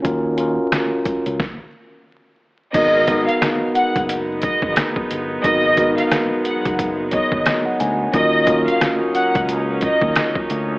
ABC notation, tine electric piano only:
X:1
M:4/4
L:1/16
Q:"Swing 16ths" 1/4=89
K:G#dor
V:1 name="Tine electric piano"
[CEFA]2 [CEFA]6 z8 | [B,DFA]2 [B,DFA]6 z8 | [B,DFA]2 [B,DFA]6 z2 c2 d f g2 | [CEFA]2 [CEFA]6 z8 |]